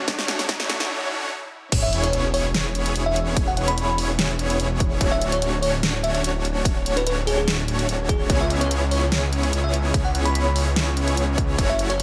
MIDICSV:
0, 0, Header, 1, 8, 480
1, 0, Start_track
1, 0, Tempo, 410959
1, 91, Time_signature, 4, 2, 24, 8
1, 14050, End_track
2, 0, Start_track
2, 0, Title_t, "FM electric piano"
2, 0, Program_c, 0, 5
2, 2132, Note_on_c, 0, 76, 96
2, 2341, Note_off_c, 0, 76, 0
2, 2377, Note_on_c, 0, 73, 98
2, 2584, Note_off_c, 0, 73, 0
2, 2728, Note_on_c, 0, 73, 94
2, 2940, Note_off_c, 0, 73, 0
2, 3575, Note_on_c, 0, 76, 97
2, 3783, Note_off_c, 0, 76, 0
2, 4059, Note_on_c, 0, 78, 93
2, 4131, Note_off_c, 0, 78, 0
2, 4172, Note_on_c, 0, 78, 75
2, 4252, Note_off_c, 0, 78, 0
2, 4296, Note_on_c, 0, 83, 100
2, 4650, Note_off_c, 0, 83, 0
2, 5974, Note_on_c, 0, 76, 101
2, 6183, Note_off_c, 0, 76, 0
2, 6214, Note_on_c, 0, 73, 95
2, 6423, Note_off_c, 0, 73, 0
2, 6566, Note_on_c, 0, 73, 90
2, 6779, Note_off_c, 0, 73, 0
2, 7047, Note_on_c, 0, 76, 86
2, 7130, Note_off_c, 0, 76, 0
2, 7175, Note_on_c, 0, 76, 76
2, 7249, Note_off_c, 0, 76, 0
2, 8140, Note_on_c, 0, 71, 89
2, 8211, Note_off_c, 0, 71, 0
2, 8252, Note_on_c, 0, 71, 78
2, 8332, Note_off_c, 0, 71, 0
2, 8491, Note_on_c, 0, 68, 93
2, 8591, Note_off_c, 0, 68, 0
2, 8616, Note_on_c, 0, 68, 100
2, 8823, Note_off_c, 0, 68, 0
2, 9451, Note_on_c, 0, 68, 96
2, 9741, Note_off_c, 0, 68, 0
2, 9818, Note_on_c, 0, 76, 98
2, 10024, Note_off_c, 0, 76, 0
2, 10055, Note_on_c, 0, 73, 91
2, 10263, Note_off_c, 0, 73, 0
2, 10410, Note_on_c, 0, 73, 87
2, 10621, Note_off_c, 0, 73, 0
2, 11257, Note_on_c, 0, 76, 94
2, 11464, Note_off_c, 0, 76, 0
2, 11733, Note_on_c, 0, 78, 94
2, 11808, Note_off_c, 0, 78, 0
2, 11850, Note_on_c, 0, 78, 75
2, 11931, Note_off_c, 0, 78, 0
2, 11975, Note_on_c, 0, 83, 96
2, 12330, Note_off_c, 0, 83, 0
2, 13659, Note_on_c, 0, 76, 97
2, 13865, Note_off_c, 0, 76, 0
2, 13895, Note_on_c, 0, 73, 94
2, 14050, Note_off_c, 0, 73, 0
2, 14050, End_track
3, 0, Start_track
3, 0, Title_t, "Digital synth lead"
3, 0, Program_c, 1, 84
3, 2011, Note_on_c, 1, 73, 101
3, 3424, Note_off_c, 1, 73, 0
3, 3450, Note_on_c, 1, 73, 87
3, 3903, Note_off_c, 1, 73, 0
3, 3930, Note_on_c, 1, 73, 104
3, 5343, Note_off_c, 1, 73, 0
3, 5370, Note_on_c, 1, 73, 85
3, 5823, Note_off_c, 1, 73, 0
3, 5849, Note_on_c, 1, 73, 106
3, 7262, Note_off_c, 1, 73, 0
3, 7289, Note_on_c, 1, 73, 88
3, 7743, Note_off_c, 1, 73, 0
3, 7771, Note_on_c, 1, 73, 112
3, 9184, Note_off_c, 1, 73, 0
3, 9212, Note_on_c, 1, 73, 85
3, 9664, Note_off_c, 1, 73, 0
3, 9690, Note_on_c, 1, 73, 108
3, 11103, Note_off_c, 1, 73, 0
3, 11131, Note_on_c, 1, 73, 84
3, 11584, Note_off_c, 1, 73, 0
3, 11611, Note_on_c, 1, 73, 106
3, 13024, Note_off_c, 1, 73, 0
3, 13052, Note_on_c, 1, 73, 85
3, 13504, Note_off_c, 1, 73, 0
3, 13533, Note_on_c, 1, 73, 109
3, 14050, Note_off_c, 1, 73, 0
3, 14050, End_track
4, 0, Start_track
4, 0, Title_t, "Supersaw synth"
4, 0, Program_c, 2, 81
4, 92, Note_on_c, 2, 57, 99
4, 92, Note_on_c, 2, 61, 92
4, 92, Note_on_c, 2, 62, 88
4, 92, Note_on_c, 2, 66, 91
4, 92, Note_on_c, 2, 73, 109
4, 1504, Note_off_c, 2, 57, 0
4, 1504, Note_off_c, 2, 61, 0
4, 1504, Note_off_c, 2, 62, 0
4, 1504, Note_off_c, 2, 66, 0
4, 1504, Note_off_c, 2, 73, 0
4, 2011, Note_on_c, 2, 59, 101
4, 2011, Note_on_c, 2, 64, 87
4, 2011, Note_on_c, 2, 73, 106
4, 2012, Note_on_c, 2, 61, 85
4, 2012, Note_on_c, 2, 68, 89
4, 3424, Note_off_c, 2, 59, 0
4, 3424, Note_off_c, 2, 61, 0
4, 3424, Note_off_c, 2, 64, 0
4, 3424, Note_off_c, 2, 68, 0
4, 3424, Note_off_c, 2, 73, 0
4, 3451, Note_on_c, 2, 59, 77
4, 3451, Note_on_c, 2, 61, 68
4, 3451, Note_on_c, 2, 64, 70
4, 3451, Note_on_c, 2, 68, 70
4, 3451, Note_on_c, 2, 73, 86
4, 3903, Note_off_c, 2, 59, 0
4, 3904, Note_off_c, 2, 61, 0
4, 3904, Note_off_c, 2, 64, 0
4, 3904, Note_off_c, 2, 68, 0
4, 3904, Note_off_c, 2, 73, 0
4, 3930, Note_on_c, 2, 59, 100
4, 3930, Note_on_c, 2, 61, 89
4, 3930, Note_on_c, 2, 64, 92
4, 3930, Note_on_c, 2, 68, 86
4, 3930, Note_on_c, 2, 73, 110
4, 5343, Note_off_c, 2, 59, 0
4, 5343, Note_off_c, 2, 61, 0
4, 5343, Note_off_c, 2, 64, 0
4, 5343, Note_off_c, 2, 68, 0
4, 5343, Note_off_c, 2, 73, 0
4, 5368, Note_on_c, 2, 68, 70
4, 5369, Note_on_c, 2, 59, 79
4, 5369, Note_on_c, 2, 61, 72
4, 5369, Note_on_c, 2, 64, 71
4, 5369, Note_on_c, 2, 73, 84
4, 5822, Note_off_c, 2, 68, 0
4, 5822, Note_off_c, 2, 73, 0
4, 5823, Note_off_c, 2, 59, 0
4, 5823, Note_off_c, 2, 61, 0
4, 5823, Note_off_c, 2, 64, 0
4, 5848, Note_on_c, 2, 62, 90
4, 5848, Note_on_c, 2, 66, 88
4, 5848, Note_on_c, 2, 73, 103
4, 5849, Note_on_c, 2, 57, 103
4, 5849, Note_on_c, 2, 61, 92
4, 7262, Note_off_c, 2, 57, 0
4, 7262, Note_off_c, 2, 62, 0
4, 7262, Note_off_c, 2, 66, 0
4, 7262, Note_off_c, 2, 73, 0
4, 7263, Note_off_c, 2, 61, 0
4, 7289, Note_on_c, 2, 57, 74
4, 7289, Note_on_c, 2, 61, 72
4, 7289, Note_on_c, 2, 62, 74
4, 7289, Note_on_c, 2, 66, 70
4, 7290, Note_on_c, 2, 73, 86
4, 7742, Note_off_c, 2, 57, 0
4, 7742, Note_off_c, 2, 66, 0
4, 7743, Note_off_c, 2, 61, 0
4, 7743, Note_off_c, 2, 62, 0
4, 7743, Note_off_c, 2, 73, 0
4, 7768, Note_on_c, 2, 57, 97
4, 7768, Note_on_c, 2, 61, 87
4, 7768, Note_on_c, 2, 62, 91
4, 7768, Note_on_c, 2, 73, 108
4, 7769, Note_on_c, 2, 66, 88
4, 9182, Note_off_c, 2, 57, 0
4, 9182, Note_off_c, 2, 61, 0
4, 9182, Note_off_c, 2, 62, 0
4, 9182, Note_off_c, 2, 73, 0
4, 9183, Note_off_c, 2, 66, 0
4, 9211, Note_on_c, 2, 57, 78
4, 9211, Note_on_c, 2, 61, 68
4, 9211, Note_on_c, 2, 62, 68
4, 9211, Note_on_c, 2, 66, 69
4, 9212, Note_on_c, 2, 73, 81
4, 9663, Note_off_c, 2, 61, 0
4, 9663, Note_off_c, 2, 66, 0
4, 9664, Note_off_c, 2, 57, 0
4, 9664, Note_off_c, 2, 62, 0
4, 9664, Note_off_c, 2, 73, 0
4, 9689, Note_on_c, 2, 61, 88
4, 9690, Note_on_c, 2, 59, 101
4, 9690, Note_on_c, 2, 64, 93
4, 9691, Note_on_c, 2, 68, 90
4, 9691, Note_on_c, 2, 73, 107
4, 11103, Note_off_c, 2, 59, 0
4, 11103, Note_off_c, 2, 61, 0
4, 11103, Note_off_c, 2, 64, 0
4, 11103, Note_off_c, 2, 73, 0
4, 11104, Note_off_c, 2, 68, 0
4, 11131, Note_on_c, 2, 73, 85
4, 11132, Note_on_c, 2, 59, 78
4, 11132, Note_on_c, 2, 61, 69
4, 11132, Note_on_c, 2, 64, 67
4, 11132, Note_on_c, 2, 68, 72
4, 11584, Note_off_c, 2, 59, 0
4, 11584, Note_off_c, 2, 61, 0
4, 11584, Note_off_c, 2, 64, 0
4, 11584, Note_off_c, 2, 68, 0
4, 11584, Note_off_c, 2, 73, 0
4, 11610, Note_on_c, 2, 59, 96
4, 11610, Note_on_c, 2, 61, 87
4, 11610, Note_on_c, 2, 68, 87
4, 11610, Note_on_c, 2, 73, 106
4, 11611, Note_on_c, 2, 64, 89
4, 13023, Note_off_c, 2, 59, 0
4, 13023, Note_off_c, 2, 61, 0
4, 13023, Note_off_c, 2, 68, 0
4, 13023, Note_off_c, 2, 73, 0
4, 13024, Note_off_c, 2, 64, 0
4, 13050, Note_on_c, 2, 59, 80
4, 13050, Note_on_c, 2, 64, 68
4, 13050, Note_on_c, 2, 73, 83
4, 13051, Note_on_c, 2, 61, 68
4, 13051, Note_on_c, 2, 68, 69
4, 13503, Note_off_c, 2, 59, 0
4, 13503, Note_off_c, 2, 64, 0
4, 13503, Note_off_c, 2, 73, 0
4, 13504, Note_off_c, 2, 61, 0
4, 13504, Note_off_c, 2, 68, 0
4, 13530, Note_on_c, 2, 61, 88
4, 13530, Note_on_c, 2, 64, 88
4, 13530, Note_on_c, 2, 66, 86
4, 13530, Note_on_c, 2, 73, 108
4, 13531, Note_on_c, 2, 57, 99
4, 14050, Note_off_c, 2, 57, 0
4, 14050, Note_off_c, 2, 61, 0
4, 14050, Note_off_c, 2, 64, 0
4, 14050, Note_off_c, 2, 66, 0
4, 14050, Note_off_c, 2, 73, 0
4, 14050, End_track
5, 0, Start_track
5, 0, Title_t, "Detuned saw bass"
5, 0, Program_c, 3, 39
5, 91, Note_on_c, 3, 26, 96
5, 1051, Note_off_c, 3, 26, 0
5, 2009, Note_on_c, 3, 28, 100
5, 3427, Note_off_c, 3, 28, 0
5, 3450, Note_on_c, 3, 28, 99
5, 3908, Note_off_c, 3, 28, 0
5, 3930, Note_on_c, 3, 28, 102
5, 5348, Note_off_c, 3, 28, 0
5, 5368, Note_on_c, 3, 28, 104
5, 5827, Note_off_c, 3, 28, 0
5, 5850, Note_on_c, 3, 26, 102
5, 7268, Note_off_c, 3, 26, 0
5, 7287, Note_on_c, 3, 26, 101
5, 7746, Note_off_c, 3, 26, 0
5, 7768, Note_on_c, 3, 26, 101
5, 9187, Note_off_c, 3, 26, 0
5, 9211, Note_on_c, 3, 26, 96
5, 9691, Note_on_c, 3, 37, 102
5, 9708, Note_off_c, 3, 26, 0
5, 11108, Note_off_c, 3, 37, 0
5, 11130, Note_on_c, 3, 37, 97
5, 11588, Note_off_c, 3, 37, 0
5, 11611, Note_on_c, 3, 37, 101
5, 13028, Note_off_c, 3, 37, 0
5, 13050, Note_on_c, 3, 37, 101
5, 13508, Note_off_c, 3, 37, 0
5, 13530, Note_on_c, 3, 30, 100
5, 14050, Note_off_c, 3, 30, 0
5, 14050, End_track
6, 0, Start_track
6, 0, Title_t, "Riser"
6, 0, Program_c, 4, 103
6, 0, Note_on_c, 4, 60, 75
6, 1050, Note_off_c, 4, 60, 0
6, 14050, End_track
7, 0, Start_track
7, 0, Title_t, "Sub drop"
7, 0, Program_c, 5, 103
7, 2010, Note_on_c, 5, 60, 79
7, 3931, Note_off_c, 5, 60, 0
7, 14050, End_track
8, 0, Start_track
8, 0, Title_t, "Drums"
8, 90, Note_on_c, 9, 36, 105
8, 91, Note_on_c, 9, 38, 89
8, 91, Note_on_c, 9, 42, 79
8, 207, Note_off_c, 9, 36, 0
8, 208, Note_off_c, 9, 38, 0
8, 208, Note_off_c, 9, 42, 0
8, 217, Note_on_c, 9, 38, 84
8, 331, Note_off_c, 9, 38, 0
8, 331, Note_on_c, 9, 38, 98
8, 331, Note_on_c, 9, 42, 65
8, 448, Note_off_c, 9, 38, 0
8, 448, Note_off_c, 9, 42, 0
8, 457, Note_on_c, 9, 38, 83
8, 457, Note_on_c, 9, 42, 64
8, 570, Note_on_c, 9, 36, 97
8, 571, Note_off_c, 9, 38, 0
8, 571, Note_off_c, 9, 42, 0
8, 571, Note_on_c, 9, 38, 101
8, 571, Note_on_c, 9, 42, 83
8, 687, Note_off_c, 9, 36, 0
8, 688, Note_off_c, 9, 38, 0
8, 688, Note_off_c, 9, 42, 0
8, 698, Note_on_c, 9, 38, 88
8, 812, Note_off_c, 9, 38, 0
8, 812, Note_on_c, 9, 38, 101
8, 812, Note_on_c, 9, 42, 61
8, 929, Note_off_c, 9, 38, 0
8, 929, Note_off_c, 9, 42, 0
8, 938, Note_on_c, 9, 38, 89
8, 1054, Note_off_c, 9, 38, 0
8, 2011, Note_on_c, 9, 36, 127
8, 2012, Note_on_c, 9, 42, 86
8, 2012, Note_on_c, 9, 49, 105
8, 2012, Note_on_c, 9, 51, 47
8, 2127, Note_off_c, 9, 36, 0
8, 2128, Note_off_c, 9, 42, 0
8, 2128, Note_off_c, 9, 49, 0
8, 2128, Note_off_c, 9, 51, 0
8, 2251, Note_on_c, 9, 42, 70
8, 2368, Note_off_c, 9, 42, 0
8, 2378, Note_on_c, 9, 42, 72
8, 2491, Note_off_c, 9, 42, 0
8, 2491, Note_on_c, 9, 42, 88
8, 2608, Note_off_c, 9, 42, 0
8, 2732, Note_on_c, 9, 46, 99
8, 2849, Note_off_c, 9, 46, 0
8, 2972, Note_on_c, 9, 38, 123
8, 2972, Note_on_c, 9, 42, 83
8, 2972, Note_on_c, 9, 51, 42
8, 3089, Note_off_c, 9, 38, 0
8, 3089, Note_off_c, 9, 42, 0
8, 3089, Note_off_c, 9, 51, 0
8, 3212, Note_on_c, 9, 42, 70
8, 3329, Note_off_c, 9, 42, 0
8, 3338, Note_on_c, 9, 42, 69
8, 3453, Note_off_c, 9, 42, 0
8, 3453, Note_on_c, 9, 42, 88
8, 3570, Note_off_c, 9, 42, 0
8, 3692, Note_on_c, 9, 42, 71
8, 3808, Note_off_c, 9, 42, 0
8, 3931, Note_on_c, 9, 36, 127
8, 3931, Note_on_c, 9, 42, 86
8, 3931, Note_on_c, 9, 51, 48
8, 4047, Note_off_c, 9, 36, 0
8, 4048, Note_off_c, 9, 42, 0
8, 4048, Note_off_c, 9, 51, 0
8, 4170, Note_on_c, 9, 42, 73
8, 4287, Note_off_c, 9, 42, 0
8, 4297, Note_on_c, 9, 42, 71
8, 4412, Note_off_c, 9, 42, 0
8, 4412, Note_on_c, 9, 42, 89
8, 4528, Note_off_c, 9, 42, 0
8, 4651, Note_on_c, 9, 46, 98
8, 4768, Note_off_c, 9, 46, 0
8, 4891, Note_on_c, 9, 38, 123
8, 4891, Note_on_c, 9, 42, 87
8, 4891, Note_on_c, 9, 51, 38
8, 5008, Note_off_c, 9, 38, 0
8, 5008, Note_off_c, 9, 42, 0
8, 5008, Note_off_c, 9, 51, 0
8, 5130, Note_on_c, 9, 42, 69
8, 5247, Note_off_c, 9, 42, 0
8, 5257, Note_on_c, 9, 42, 68
8, 5370, Note_off_c, 9, 42, 0
8, 5370, Note_on_c, 9, 42, 88
8, 5487, Note_off_c, 9, 42, 0
8, 5609, Note_on_c, 9, 42, 70
8, 5610, Note_on_c, 9, 36, 120
8, 5726, Note_off_c, 9, 42, 0
8, 5727, Note_off_c, 9, 36, 0
8, 5849, Note_on_c, 9, 42, 84
8, 5849, Note_on_c, 9, 51, 44
8, 5850, Note_on_c, 9, 36, 127
8, 5966, Note_off_c, 9, 42, 0
8, 5966, Note_off_c, 9, 51, 0
8, 5967, Note_off_c, 9, 36, 0
8, 6091, Note_on_c, 9, 42, 72
8, 6208, Note_off_c, 9, 42, 0
8, 6218, Note_on_c, 9, 42, 69
8, 6331, Note_off_c, 9, 42, 0
8, 6331, Note_on_c, 9, 42, 86
8, 6448, Note_off_c, 9, 42, 0
8, 6571, Note_on_c, 9, 46, 92
8, 6688, Note_off_c, 9, 46, 0
8, 6812, Note_on_c, 9, 38, 127
8, 6812, Note_on_c, 9, 42, 85
8, 6812, Note_on_c, 9, 51, 39
8, 6928, Note_off_c, 9, 38, 0
8, 6928, Note_off_c, 9, 42, 0
8, 6928, Note_off_c, 9, 51, 0
8, 7053, Note_on_c, 9, 42, 67
8, 7169, Note_off_c, 9, 42, 0
8, 7178, Note_on_c, 9, 42, 65
8, 7293, Note_off_c, 9, 42, 0
8, 7293, Note_on_c, 9, 42, 87
8, 7409, Note_off_c, 9, 42, 0
8, 7533, Note_on_c, 9, 42, 68
8, 7649, Note_off_c, 9, 42, 0
8, 7769, Note_on_c, 9, 36, 127
8, 7773, Note_on_c, 9, 42, 84
8, 7773, Note_on_c, 9, 51, 45
8, 7886, Note_off_c, 9, 36, 0
8, 7889, Note_off_c, 9, 42, 0
8, 7889, Note_off_c, 9, 51, 0
8, 8014, Note_on_c, 9, 42, 69
8, 8130, Note_off_c, 9, 42, 0
8, 8139, Note_on_c, 9, 42, 68
8, 8253, Note_off_c, 9, 42, 0
8, 8253, Note_on_c, 9, 42, 83
8, 8370, Note_off_c, 9, 42, 0
8, 8494, Note_on_c, 9, 46, 91
8, 8611, Note_off_c, 9, 46, 0
8, 8733, Note_on_c, 9, 38, 126
8, 8733, Note_on_c, 9, 42, 80
8, 8733, Note_on_c, 9, 51, 40
8, 8850, Note_off_c, 9, 38, 0
8, 8850, Note_off_c, 9, 42, 0
8, 8850, Note_off_c, 9, 51, 0
8, 8973, Note_on_c, 9, 42, 65
8, 9090, Note_off_c, 9, 42, 0
8, 9099, Note_on_c, 9, 42, 68
8, 9214, Note_off_c, 9, 42, 0
8, 9214, Note_on_c, 9, 42, 81
8, 9331, Note_off_c, 9, 42, 0
8, 9450, Note_on_c, 9, 36, 110
8, 9452, Note_on_c, 9, 42, 66
8, 9567, Note_off_c, 9, 36, 0
8, 9569, Note_off_c, 9, 42, 0
8, 9691, Note_on_c, 9, 36, 127
8, 9691, Note_on_c, 9, 42, 78
8, 9691, Note_on_c, 9, 51, 49
8, 9807, Note_off_c, 9, 36, 0
8, 9808, Note_off_c, 9, 42, 0
8, 9808, Note_off_c, 9, 51, 0
8, 9932, Note_on_c, 9, 42, 65
8, 10049, Note_off_c, 9, 42, 0
8, 10059, Note_on_c, 9, 42, 64
8, 10173, Note_off_c, 9, 42, 0
8, 10173, Note_on_c, 9, 42, 85
8, 10290, Note_off_c, 9, 42, 0
8, 10411, Note_on_c, 9, 46, 94
8, 10528, Note_off_c, 9, 46, 0
8, 10651, Note_on_c, 9, 38, 124
8, 10651, Note_on_c, 9, 42, 80
8, 10651, Note_on_c, 9, 51, 43
8, 10768, Note_off_c, 9, 38, 0
8, 10768, Note_off_c, 9, 42, 0
8, 10768, Note_off_c, 9, 51, 0
8, 10893, Note_on_c, 9, 42, 64
8, 11010, Note_off_c, 9, 42, 0
8, 11018, Note_on_c, 9, 42, 63
8, 11132, Note_off_c, 9, 42, 0
8, 11132, Note_on_c, 9, 42, 80
8, 11249, Note_off_c, 9, 42, 0
8, 11372, Note_on_c, 9, 42, 66
8, 11489, Note_off_c, 9, 42, 0
8, 11611, Note_on_c, 9, 36, 124
8, 11613, Note_on_c, 9, 42, 81
8, 11613, Note_on_c, 9, 51, 50
8, 11728, Note_off_c, 9, 36, 0
8, 11730, Note_off_c, 9, 42, 0
8, 11730, Note_off_c, 9, 51, 0
8, 11854, Note_on_c, 9, 42, 64
8, 11970, Note_off_c, 9, 42, 0
8, 11978, Note_on_c, 9, 42, 64
8, 12091, Note_off_c, 9, 42, 0
8, 12091, Note_on_c, 9, 42, 81
8, 12208, Note_off_c, 9, 42, 0
8, 12331, Note_on_c, 9, 46, 97
8, 12448, Note_off_c, 9, 46, 0
8, 12572, Note_on_c, 9, 38, 121
8, 12572, Note_on_c, 9, 42, 78
8, 12572, Note_on_c, 9, 51, 42
8, 12689, Note_off_c, 9, 38, 0
8, 12689, Note_off_c, 9, 42, 0
8, 12689, Note_off_c, 9, 51, 0
8, 12812, Note_on_c, 9, 42, 63
8, 12928, Note_off_c, 9, 42, 0
8, 12937, Note_on_c, 9, 42, 63
8, 13051, Note_off_c, 9, 42, 0
8, 13051, Note_on_c, 9, 42, 76
8, 13168, Note_off_c, 9, 42, 0
8, 13291, Note_on_c, 9, 36, 107
8, 13292, Note_on_c, 9, 42, 62
8, 13407, Note_off_c, 9, 36, 0
8, 13409, Note_off_c, 9, 42, 0
8, 13531, Note_on_c, 9, 36, 116
8, 13533, Note_on_c, 9, 42, 75
8, 13533, Note_on_c, 9, 51, 49
8, 13648, Note_off_c, 9, 36, 0
8, 13649, Note_off_c, 9, 42, 0
8, 13649, Note_off_c, 9, 51, 0
8, 13772, Note_on_c, 9, 42, 63
8, 13889, Note_off_c, 9, 42, 0
8, 13898, Note_on_c, 9, 42, 65
8, 14012, Note_off_c, 9, 42, 0
8, 14012, Note_on_c, 9, 42, 78
8, 14050, Note_off_c, 9, 42, 0
8, 14050, End_track
0, 0, End_of_file